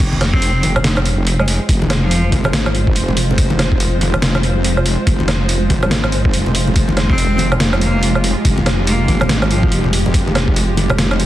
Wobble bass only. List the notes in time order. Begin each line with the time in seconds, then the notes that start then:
0.00 F1
1.69 F1
2.53 G#1
2.96 F1
3.38 F1
5.07 F1
5.91 G#1
6.34 F1
6.76 F1
8.45 F1
9.29 G#1
9.72 F1
10.14 F1